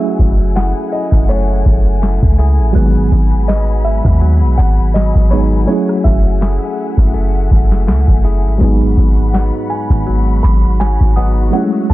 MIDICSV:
0, 0, Header, 1, 8, 480
1, 0, Start_track
1, 0, Tempo, 731707
1, 1803, Time_signature, 4, 2, 24, 8
1, 7831, End_track
2, 0, Start_track
2, 0, Title_t, "Synth pluck"
2, 0, Program_c, 0, 84
2, 1804, Note_on_c, 0, 90, 64
2, 2868, Note_off_c, 0, 90, 0
2, 3481, Note_on_c, 0, 83, 50
2, 3936, Note_off_c, 0, 83, 0
2, 7321, Note_on_c, 0, 87, 77
2, 7776, Note_off_c, 0, 87, 0
2, 7831, End_track
3, 0, Start_track
3, 0, Title_t, "String section"
3, 0, Program_c, 1, 48
3, 0, Note_on_c, 1, 64, 70
3, 0, Note_on_c, 1, 78, 81
3, 0, Note_on_c, 1, 80, 74
3, 1784, Note_off_c, 1, 64, 0
3, 1784, Note_off_c, 1, 78, 0
3, 1804, Note_on_c, 1, 78, 65
3, 1805, Note_on_c, 1, 83, 81
3, 3705, Note_off_c, 1, 78, 0
3, 3705, Note_off_c, 1, 83, 0
3, 3725, Note_on_c, 1, 78, 82
3, 3726, Note_on_c, 1, 76, 67
3, 5617, Note_off_c, 1, 80, 0
3, 5625, Note_off_c, 1, 78, 0
3, 5626, Note_off_c, 1, 76, 0
3, 5644, Note_on_c, 1, 78, 73
3, 5645, Note_on_c, 1, 66, 72
3, 5645, Note_on_c, 1, 83, 78
3, 7545, Note_off_c, 1, 78, 0
3, 7545, Note_off_c, 1, 83, 0
3, 7564, Note_on_c, 1, 76, 70
3, 7564, Note_on_c, 1, 78, 84
3, 7831, Note_off_c, 1, 66, 0
3, 7831, Note_off_c, 1, 76, 0
3, 7831, Note_off_c, 1, 78, 0
3, 7831, End_track
4, 0, Start_track
4, 0, Title_t, "Grand piano"
4, 0, Program_c, 2, 0
4, 0, Note_on_c, 2, 76, 97
4, 338, Note_off_c, 2, 76, 0
4, 367, Note_on_c, 2, 78, 93
4, 606, Note_on_c, 2, 75, 83
4, 612, Note_off_c, 2, 78, 0
4, 828, Note_off_c, 2, 75, 0
4, 846, Note_on_c, 2, 73, 77
4, 1299, Note_off_c, 2, 73, 0
4, 2284, Note_on_c, 2, 75, 91
4, 2522, Note_on_c, 2, 76, 93
4, 2531, Note_off_c, 2, 75, 0
4, 3001, Note_on_c, 2, 78, 104
4, 3017, Note_off_c, 2, 76, 0
4, 3242, Note_on_c, 2, 75, 90
4, 3250, Note_off_c, 2, 78, 0
4, 3481, Note_on_c, 2, 73, 83
4, 3490, Note_off_c, 2, 75, 0
4, 3535, Note_off_c, 2, 73, 0
4, 3721, Note_on_c, 2, 73, 83
4, 3946, Note_off_c, 2, 73, 0
4, 3962, Note_on_c, 2, 76, 85
4, 4417, Note_off_c, 2, 76, 0
4, 6124, Note_on_c, 2, 78, 85
4, 6178, Note_off_c, 2, 78, 0
4, 6362, Note_on_c, 2, 80, 90
4, 6817, Note_off_c, 2, 80, 0
4, 6842, Note_on_c, 2, 83, 102
4, 7066, Note_off_c, 2, 83, 0
4, 7083, Note_on_c, 2, 80, 95
4, 7323, Note_on_c, 2, 78, 83
4, 7331, Note_off_c, 2, 80, 0
4, 7554, Note_off_c, 2, 78, 0
4, 7564, Note_on_c, 2, 78, 82
4, 7618, Note_off_c, 2, 78, 0
4, 7804, Note_on_c, 2, 81, 88
4, 7831, Note_off_c, 2, 81, 0
4, 7831, End_track
5, 0, Start_track
5, 0, Title_t, "FM electric piano"
5, 0, Program_c, 3, 5
5, 0, Note_on_c, 3, 54, 69
5, 0, Note_on_c, 3, 57, 65
5, 0, Note_on_c, 3, 61, 64
5, 0, Note_on_c, 3, 64, 63
5, 0, Note_on_c, 3, 68, 77
5, 5, Control_c, 3, 64, 127
5, 1769, Note_off_c, 3, 54, 0
5, 1774, Note_off_c, 3, 57, 0
5, 1779, Note_off_c, 3, 61, 0
5, 1784, Note_off_c, 3, 64, 0
5, 1787, Note_on_c, 3, 54, 88
5, 1789, Note_off_c, 3, 68, 0
5, 1796, Note_on_c, 3, 56, 81
5, 1807, Note_on_c, 3, 59, 79
5, 1812, Control_c, 3, 64, 0
5, 1816, Note_on_c, 3, 51, 77
5, 1826, Note_on_c, 3, 68, 94
5, 1941, Control_c, 3, 64, 127
5, 3449, Note_off_c, 3, 54, 0
5, 3454, Note_off_c, 3, 56, 0
5, 3459, Note_off_c, 3, 59, 0
5, 3463, Note_off_c, 3, 51, 0
5, 3468, Note_off_c, 3, 68, 0
5, 3477, Note_on_c, 3, 54, 51
5, 3482, Note_on_c, 3, 56, 43
5, 3487, Note_on_c, 3, 59, 44
5, 3492, Note_on_c, 3, 63, 43
5, 3496, Note_on_c, 3, 68, 56
5, 3700, Note_off_c, 3, 54, 0
5, 3708, Note_on_c, 3, 54, 72
5, 3718, Note_on_c, 3, 57, 63
5, 3723, Note_off_c, 3, 56, 0
5, 3725, Note_off_c, 3, 59, 0
5, 3727, Note_on_c, 3, 61, 66
5, 3728, Note_off_c, 3, 63, 0
5, 3730, Note_off_c, 3, 68, 0
5, 3731, Control_c, 3, 64, 0
5, 3737, Note_on_c, 3, 64, 63
5, 3746, Note_on_c, 3, 68, 78
5, 3843, Control_c, 3, 64, 127
5, 5609, Note_off_c, 3, 54, 0
5, 5614, Note_off_c, 3, 57, 0
5, 5619, Note_off_c, 3, 61, 0
5, 5624, Note_off_c, 3, 64, 0
5, 5628, Note_off_c, 3, 68, 0
5, 5629, Note_on_c, 3, 54, 81
5, 5639, Note_on_c, 3, 56, 76
5, 5649, Note_on_c, 3, 59, 74
5, 5653, Control_c, 3, 64, 0
5, 5658, Note_on_c, 3, 63, 78
5, 5668, Note_on_c, 3, 68, 95
5, 5766, Control_c, 3, 64, 127
5, 7530, Note_off_c, 3, 54, 0
5, 7535, Note_off_c, 3, 56, 0
5, 7540, Note_off_c, 3, 59, 0
5, 7544, Note_off_c, 3, 63, 0
5, 7548, Note_on_c, 3, 54, 72
5, 7550, Note_off_c, 3, 68, 0
5, 7557, Note_on_c, 3, 57, 66
5, 7567, Note_on_c, 3, 61, 67
5, 7571, Control_c, 3, 64, 0
5, 7577, Note_on_c, 3, 64, 68
5, 7586, Note_on_c, 3, 67, 62
5, 7621, Note_off_c, 3, 67, 0
5, 7628, Note_on_c, 3, 56, 74
5, 7674, Control_c, 3, 64, 127
5, 7831, Note_off_c, 3, 54, 0
5, 7831, Note_off_c, 3, 56, 0
5, 7831, Note_off_c, 3, 57, 0
5, 7831, Note_off_c, 3, 61, 0
5, 7831, Note_off_c, 3, 64, 0
5, 7831, End_track
6, 0, Start_track
6, 0, Title_t, "Clean electric guitar"
6, 0, Program_c, 4, 27
6, 0, Note_on_c, 4, 54, 87
6, 364, Note_on_c, 4, 57, 61
6, 368, Note_on_c, 4, 64, 64
6, 371, Note_on_c, 4, 68, 71
6, 835, Note_off_c, 4, 57, 0
6, 843, Note_on_c, 4, 57, 71
6, 1316, Note_off_c, 4, 57, 0
6, 1324, Note_on_c, 4, 57, 65
6, 1556, Note_off_c, 4, 57, 0
6, 1560, Note_off_c, 4, 64, 0
6, 1564, Note_on_c, 4, 57, 60
6, 1568, Note_on_c, 4, 64, 62
6, 1569, Note_off_c, 4, 68, 0
6, 1572, Note_on_c, 4, 68, 71
6, 1804, Note_on_c, 4, 44, 88
6, 1823, Note_off_c, 4, 54, 0
6, 1856, Note_off_c, 4, 57, 0
6, 1858, Note_off_c, 4, 64, 0
6, 2284, Note_on_c, 4, 54, 64
6, 2288, Note_on_c, 4, 59, 63
6, 2303, Note_off_c, 4, 68, 0
6, 2762, Note_off_c, 4, 54, 0
6, 2765, Note_on_c, 4, 54, 73
6, 3243, Note_off_c, 4, 54, 0
6, 3245, Note_on_c, 4, 54, 67
6, 3481, Note_off_c, 4, 59, 0
6, 3483, Note_off_c, 4, 54, 0
6, 3485, Note_on_c, 4, 54, 62
6, 3489, Note_on_c, 4, 59, 63
6, 3493, Note_on_c, 4, 63, 67
6, 3722, Note_off_c, 4, 54, 0
6, 3724, Note_off_c, 4, 44, 0
6, 3725, Note_on_c, 4, 54, 85
6, 3778, Note_off_c, 4, 59, 0
6, 3780, Note_off_c, 4, 63, 0
6, 4205, Note_on_c, 4, 57, 60
6, 4209, Note_on_c, 4, 64, 63
6, 4213, Note_on_c, 4, 68, 68
6, 4676, Note_off_c, 4, 57, 0
6, 4684, Note_on_c, 4, 57, 70
6, 5157, Note_off_c, 4, 57, 0
6, 5164, Note_on_c, 4, 57, 64
6, 5396, Note_off_c, 4, 57, 0
6, 5400, Note_off_c, 4, 64, 0
6, 5404, Note_on_c, 4, 57, 60
6, 5408, Note_on_c, 4, 64, 57
6, 5409, Note_off_c, 4, 68, 0
6, 5412, Note_on_c, 4, 68, 67
6, 5643, Note_on_c, 4, 44, 88
6, 5663, Note_off_c, 4, 54, 0
6, 5696, Note_off_c, 4, 57, 0
6, 5697, Note_off_c, 4, 64, 0
6, 6124, Note_on_c, 4, 54, 63
6, 6128, Note_on_c, 4, 59, 66
6, 6132, Note_on_c, 4, 63, 69
6, 6143, Note_off_c, 4, 68, 0
6, 6601, Note_off_c, 4, 54, 0
6, 6603, Note_on_c, 4, 54, 73
6, 7081, Note_off_c, 4, 54, 0
6, 7084, Note_on_c, 4, 54, 65
6, 7320, Note_off_c, 4, 59, 0
6, 7321, Note_off_c, 4, 54, 0
6, 7323, Note_on_c, 4, 54, 63
6, 7324, Note_off_c, 4, 63, 0
6, 7328, Note_on_c, 4, 59, 63
6, 7331, Note_on_c, 4, 63, 70
6, 7561, Note_off_c, 4, 54, 0
6, 7563, Note_off_c, 4, 44, 0
6, 7564, Note_on_c, 4, 54, 90
6, 7617, Note_off_c, 4, 59, 0
6, 7619, Note_off_c, 4, 63, 0
6, 7831, Note_off_c, 4, 54, 0
6, 7831, End_track
7, 0, Start_track
7, 0, Title_t, "808-style bass"
7, 0, Program_c, 5, 38
7, 125, Note_on_c, 5, 30, 96
7, 479, Note_off_c, 5, 30, 0
7, 733, Note_on_c, 5, 30, 102
7, 1069, Note_off_c, 5, 30, 0
7, 1086, Note_on_c, 5, 30, 106
7, 1440, Note_off_c, 5, 30, 0
7, 1458, Note_on_c, 5, 37, 103
7, 1697, Note_on_c, 5, 33, 93
7, 1707, Note_off_c, 5, 37, 0
7, 1800, Note_off_c, 5, 33, 0
7, 1806, Note_on_c, 5, 32, 104
7, 2035, Note_off_c, 5, 32, 0
7, 2045, Note_on_c, 5, 32, 98
7, 2629, Note_off_c, 5, 32, 0
7, 2653, Note_on_c, 5, 39, 106
7, 2897, Note_on_c, 5, 35, 98
7, 2907, Note_off_c, 5, 39, 0
7, 3000, Note_off_c, 5, 35, 0
7, 3007, Note_on_c, 5, 32, 107
7, 3360, Note_off_c, 5, 32, 0
7, 3379, Note_on_c, 5, 32, 99
7, 3712, Note_off_c, 5, 32, 0
7, 3967, Note_on_c, 5, 30, 98
7, 4320, Note_off_c, 5, 30, 0
7, 4574, Note_on_c, 5, 30, 101
7, 4910, Note_off_c, 5, 30, 0
7, 4927, Note_on_c, 5, 30, 102
7, 5168, Note_on_c, 5, 37, 96
7, 5178, Note_off_c, 5, 30, 0
7, 5289, Note_off_c, 5, 37, 0
7, 5299, Note_on_c, 5, 30, 107
7, 5537, Note_on_c, 5, 32, 90
7, 5547, Note_off_c, 5, 30, 0
7, 5640, Note_off_c, 5, 32, 0
7, 5646, Note_on_c, 5, 32, 112
7, 5875, Note_off_c, 5, 32, 0
7, 5885, Note_on_c, 5, 32, 97
7, 6239, Note_off_c, 5, 32, 0
7, 6494, Note_on_c, 5, 32, 105
7, 6830, Note_off_c, 5, 32, 0
7, 6847, Note_on_c, 5, 32, 104
7, 7200, Note_off_c, 5, 32, 0
7, 7218, Note_on_c, 5, 32, 99
7, 7552, Note_off_c, 5, 32, 0
7, 7806, Note_on_c, 5, 30, 97
7, 7831, Note_off_c, 5, 30, 0
7, 7831, End_track
8, 0, Start_track
8, 0, Title_t, "Drums"
8, 13, Note_on_c, 9, 42, 45
8, 79, Note_off_c, 9, 42, 0
8, 123, Note_on_c, 9, 36, 87
8, 124, Note_on_c, 9, 42, 72
8, 189, Note_off_c, 9, 36, 0
8, 190, Note_off_c, 9, 42, 0
8, 256, Note_on_c, 9, 42, 47
8, 321, Note_off_c, 9, 42, 0
8, 362, Note_on_c, 9, 42, 58
8, 371, Note_on_c, 9, 38, 109
8, 428, Note_off_c, 9, 42, 0
8, 437, Note_off_c, 9, 38, 0
8, 494, Note_on_c, 9, 42, 52
8, 559, Note_off_c, 9, 42, 0
8, 606, Note_on_c, 9, 42, 71
8, 672, Note_off_c, 9, 42, 0
8, 732, Note_on_c, 9, 36, 86
8, 733, Note_on_c, 9, 42, 56
8, 743, Note_on_c, 9, 37, 63
8, 797, Note_off_c, 9, 36, 0
8, 799, Note_off_c, 9, 42, 0
8, 808, Note_off_c, 9, 37, 0
8, 844, Note_on_c, 9, 42, 77
8, 910, Note_off_c, 9, 42, 0
8, 979, Note_on_c, 9, 42, 45
8, 1044, Note_off_c, 9, 42, 0
8, 1085, Note_on_c, 9, 36, 94
8, 1150, Note_off_c, 9, 36, 0
8, 1215, Note_on_c, 9, 42, 37
8, 1281, Note_off_c, 9, 42, 0
8, 1289, Note_on_c, 9, 42, 42
8, 1332, Note_on_c, 9, 38, 113
8, 1354, Note_off_c, 9, 42, 0
8, 1368, Note_on_c, 9, 42, 46
8, 1397, Note_off_c, 9, 38, 0
8, 1434, Note_off_c, 9, 42, 0
8, 1454, Note_on_c, 9, 42, 48
8, 1456, Note_on_c, 9, 36, 81
8, 1520, Note_off_c, 9, 42, 0
8, 1522, Note_off_c, 9, 36, 0
8, 1527, Note_on_c, 9, 42, 54
8, 1593, Note_off_c, 9, 42, 0
8, 1607, Note_on_c, 9, 42, 65
8, 1673, Note_off_c, 9, 42, 0
8, 1803, Note_on_c, 9, 36, 110
8, 1803, Note_on_c, 9, 42, 68
8, 1869, Note_off_c, 9, 36, 0
8, 1869, Note_off_c, 9, 42, 0
8, 1932, Note_on_c, 9, 42, 47
8, 1997, Note_off_c, 9, 42, 0
8, 2043, Note_on_c, 9, 36, 90
8, 2043, Note_on_c, 9, 42, 76
8, 2108, Note_off_c, 9, 36, 0
8, 2108, Note_off_c, 9, 42, 0
8, 2174, Note_on_c, 9, 42, 50
8, 2240, Note_off_c, 9, 42, 0
8, 2281, Note_on_c, 9, 42, 62
8, 2290, Note_on_c, 9, 38, 114
8, 2347, Note_off_c, 9, 42, 0
8, 2356, Note_off_c, 9, 38, 0
8, 2413, Note_on_c, 9, 42, 52
8, 2479, Note_off_c, 9, 42, 0
8, 2526, Note_on_c, 9, 42, 80
8, 2591, Note_off_c, 9, 42, 0
8, 2652, Note_on_c, 9, 36, 82
8, 2653, Note_on_c, 9, 42, 58
8, 2662, Note_on_c, 9, 37, 62
8, 2717, Note_off_c, 9, 36, 0
8, 2718, Note_off_c, 9, 42, 0
8, 2728, Note_off_c, 9, 37, 0
8, 2763, Note_on_c, 9, 42, 70
8, 2829, Note_off_c, 9, 42, 0
8, 2897, Note_on_c, 9, 42, 43
8, 2962, Note_off_c, 9, 42, 0
8, 3005, Note_on_c, 9, 36, 103
8, 3071, Note_off_c, 9, 36, 0
8, 3134, Note_on_c, 9, 42, 39
8, 3199, Note_off_c, 9, 42, 0
8, 3208, Note_on_c, 9, 42, 45
8, 3251, Note_on_c, 9, 38, 110
8, 3274, Note_off_c, 9, 42, 0
8, 3288, Note_on_c, 9, 42, 46
8, 3317, Note_off_c, 9, 38, 0
8, 3354, Note_off_c, 9, 42, 0
8, 3374, Note_on_c, 9, 42, 48
8, 3377, Note_on_c, 9, 36, 86
8, 3439, Note_off_c, 9, 42, 0
8, 3442, Note_off_c, 9, 36, 0
8, 3449, Note_on_c, 9, 42, 56
8, 3514, Note_off_c, 9, 42, 0
8, 3529, Note_on_c, 9, 42, 66
8, 3594, Note_off_c, 9, 42, 0
8, 3725, Note_on_c, 9, 42, 69
8, 3790, Note_off_c, 9, 42, 0
8, 3854, Note_on_c, 9, 42, 49
8, 3865, Note_on_c, 9, 37, 78
8, 3920, Note_off_c, 9, 42, 0
8, 3931, Note_off_c, 9, 37, 0
8, 3964, Note_on_c, 9, 36, 88
8, 3966, Note_on_c, 9, 42, 74
8, 4030, Note_off_c, 9, 36, 0
8, 4032, Note_off_c, 9, 42, 0
8, 4097, Note_on_c, 9, 42, 49
8, 4163, Note_off_c, 9, 42, 0
8, 4204, Note_on_c, 9, 42, 60
8, 4213, Note_on_c, 9, 38, 111
8, 4270, Note_off_c, 9, 42, 0
8, 4279, Note_off_c, 9, 38, 0
8, 4335, Note_on_c, 9, 42, 51
8, 4401, Note_off_c, 9, 42, 0
8, 4447, Note_on_c, 9, 46, 55
8, 4512, Note_off_c, 9, 46, 0
8, 4573, Note_on_c, 9, 36, 81
8, 4574, Note_on_c, 9, 42, 54
8, 4583, Note_on_c, 9, 37, 61
8, 4638, Note_off_c, 9, 36, 0
8, 4639, Note_off_c, 9, 42, 0
8, 4649, Note_off_c, 9, 37, 0
8, 4684, Note_on_c, 9, 42, 72
8, 4750, Note_off_c, 9, 42, 0
8, 4819, Note_on_c, 9, 42, 44
8, 4885, Note_off_c, 9, 42, 0
8, 4925, Note_on_c, 9, 36, 96
8, 4991, Note_off_c, 9, 36, 0
8, 5055, Note_on_c, 9, 42, 36
8, 5062, Note_on_c, 9, 38, 68
8, 5120, Note_off_c, 9, 42, 0
8, 5127, Note_off_c, 9, 38, 0
8, 5128, Note_on_c, 9, 42, 53
8, 5171, Note_on_c, 9, 38, 113
8, 5193, Note_off_c, 9, 42, 0
8, 5208, Note_on_c, 9, 42, 65
8, 5237, Note_off_c, 9, 38, 0
8, 5274, Note_off_c, 9, 42, 0
8, 5293, Note_on_c, 9, 42, 46
8, 5297, Note_on_c, 9, 36, 85
8, 5359, Note_off_c, 9, 42, 0
8, 5362, Note_off_c, 9, 36, 0
8, 5401, Note_on_c, 9, 46, 65
8, 5404, Note_on_c, 9, 42, 54
8, 5467, Note_off_c, 9, 46, 0
8, 5470, Note_off_c, 9, 42, 0
8, 5484, Note_on_c, 9, 42, 51
8, 5550, Note_off_c, 9, 42, 0
8, 5565, Note_on_c, 9, 42, 53
8, 5631, Note_off_c, 9, 42, 0
8, 5644, Note_on_c, 9, 36, 110
8, 5644, Note_on_c, 9, 42, 66
8, 5710, Note_off_c, 9, 36, 0
8, 5710, Note_off_c, 9, 42, 0
8, 5773, Note_on_c, 9, 42, 46
8, 5839, Note_off_c, 9, 42, 0
8, 5883, Note_on_c, 9, 36, 90
8, 5883, Note_on_c, 9, 42, 74
8, 5949, Note_off_c, 9, 36, 0
8, 5949, Note_off_c, 9, 42, 0
8, 6015, Note_on_c, 9, 42, 49
8, 6081, Note_off_c, 9, 42, 0
8, 6122, Note_on_c, 9, 42, 62
8, 6130, Note_on_c, 9, 38, 111
8, 6187, Note_off_c, 9, 42, 0
8, 6196, Note_off_c, 9, 38, 0
8, 6253, Note_on_c, 9, 42, 51
8, 6318, Note_off_c, 9, 42, 0
8, 6364, Note_on_c, 9, 42, 81
8, 6430, Note_off_c, 9, 42, 0
8, 6491, Note_on_c, 9, 36, 85
8, 6492, Note_on_c, 9, 42, 55
8, 6501, Note_on_c, 9, 37, 65
8, 6557, Note_off_c, 9, 36, 0
8, 6558, Note_off_c, 9, 42, 0
8, 6567, Note_off_c, 9, 37, 0
8, 6603, Note_on_c, 9, 42, 78
8, 6669, Note_off_c, 9, 42, 0
8, 6737, Note_on_c, 9, 42, 49
8, 6803, Note_off_c, 9, 42, 0
8, 6845, Note_on_c, 9, 36, 92
8, 6910, Note_off_c, 9, 36, 0
8, 6973, Note_on_c, 9, 42, 36
8, 7038, Note_off_c, 9, 42, 0
8, 7047, Note_on_c, 9, 42, 44
8, 7090, Note_on_c, 9, 38, 114
8, 7112, Note_off_c, 9, 42, 0
8, 7127, Note_on_c, 9, 42, 46
8, 7155, Note_off_c, 9, 38, 0
8, 7192, Note_off_c, 9, 42, 0
8, 7214, Note_on_c, 9, 42, 48
8, 7216, Note_on_c, 9, 36, 85
8, 7279, Note_off_c, 9, 42, 0
8, 7282, Note_off_c, 9, 36, 0
8, 7287, Note_on_c, 9, 42, 55
8, 7353, Note_off_c, 9, 42, 0
8, 7368, Note_on_c, 9, 42, 61
8, 7434, Note_off_c, 9, 42, 0
8, 7564, Note_on_c, 9, 42, 64
8, 7630, Note_off_c, 9, 42, 0
8, 7693, Note_on_c, 9, 42, 46
8, 7759, Note_off_c, 9, 42, 0
8, 7804, Note_on_c, 9, 36, 85
8, 7804, Note_on_c, 9, 42, 75
8, 7831, Note_off_c, 9, 36, 0
8, 7831, Note_off_c, 9, 42, 0
8, 7831, End_track
0, 0, End_of_file